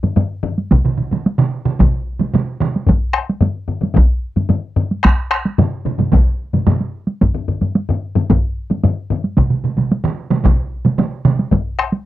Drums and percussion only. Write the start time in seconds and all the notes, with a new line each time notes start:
0.03 taiko low-mid, taiko high
0.16 taiko low-mid, taiko high
0.43 taiko low-mid
0.58 taiko high
0.71 taiko, taiko mid, taiko high
0.85 taiko mid
0.98 taiko mid
1.11 taiko mid, taiko high
1.26 taiko high
1.38 taiko mid
1.65 taiko mid
1.79 taiko, taiko mid, taiko high
2.20 taiko mid, taiko high
2.34 taiko mid, taiko high
2.60 taiko mid
2.76 taiko high
2.87 taiko, taiko low-mid, taiko high
3.13 taiko rim
3.29 taiko high
3.41 taiko low-mid, taiko high
3.68 taiko low-mid
3.81 taiko low-mid, taiko high
3.95 taiko, taiko low-mid, taiko high
4.36 taiko low-mid, taiko high
4.49 taiko low-mid, taiko high
4.76 taiko low-mid
4.91 taiko high
5.03 taiko rim, taiko, taiko high
5.31 taiko rim
5.45 taiko high
5.58 taiko low-mid, taiko mid, taiko high
5.86 taiko low-mid, taiko mid
5.99 taiko low-mid, taiko mid, taiko high
6.12 taiko, taiko low-mid, taiko mid, taiko high
6.53 taiko low-mid, taiko mid, taiko high
6.67 taiko low-mid, taiko mid, taiko high
6.80 taiko high
7.07 taiko high
7.21 taiko, taiko low-mid, taiko high
7.34 taiko low-mid
7.48 taiko low-mid
7.61 taiko low-mid, taiko high
7.75 taiko high
7.89 taiko low-mid
8.15 taiko low-mid, taiko high
8.30 taiko, taiko low-mid, taiko high
8.70 taiko low-mid, taiko high
8.84 taiko low-mid, taiko high
9.10 taiko low-mid
9.24 taiko high
9.37 taiko, taiko mid, taiko high
9.50 taiko mid
9.64 taiko mid
9.77 taiko mid, taiko high
9.92 taiko high
10.04 taiko mid
10.30 taiko mid, taiko high
10.44 taiko, taiko mid, taiko high
10.85 taiko mid, taiko high
10.98 taiko mid, taiko high
11.25 taiko mid
11.39 taiko high
11.51 taiko, taiko low-mid, taiko high
11.79 taiko rim
11.92 taiko high